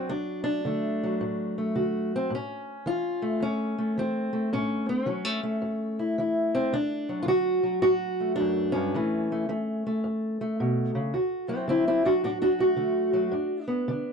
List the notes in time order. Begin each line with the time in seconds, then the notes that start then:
Already playing: F#3
0.09 D2 D4
0.44 D4
0.65 D3 A3
1.03 F#3
1.21 A2
1.58 A3
1.75 D3 F#4
2.16 C4
2.30 A2
2.35 C#4
2.86 E3 F4
3.22 A3
3.40 E2 C#4
3.78 A3
3.98 E3 C4
4.33 A3
4.53 A2 C#4
4.89 C4
5.06 E3 F#3 C#4
5.25 A3
5.43 A3
5.62 E2
5.99 E4
6.18 E3 E4
6.55 C4
6.73 D2 D4
7.09 F#3
7.22 D3 F4
7.28 F#4
7.63 F#3
7.82 A2 F#4
8.20 A3
8.36 D4
8.40 F#2
8.72 G2 C#4
8.94 A2 E3 A3
9.32 A3
9.49 E3 A3
9.87 A3
10.04 E2
10.41 A3
10.60 B2
10.95 C#3
11.14 D2 F#4
11.48 F#3 C4 E4
11.68 D3 C4 E4
11.87 C4 E4
12.05 F#3 D4 F#4
12.24 A2 D4 F#4
12.42 D4 F#4
12.59 A3 F#4
12.76 D3 A3
13.13 F#3
13.32 G2 D4
13.68 B3
13.88 D3 D4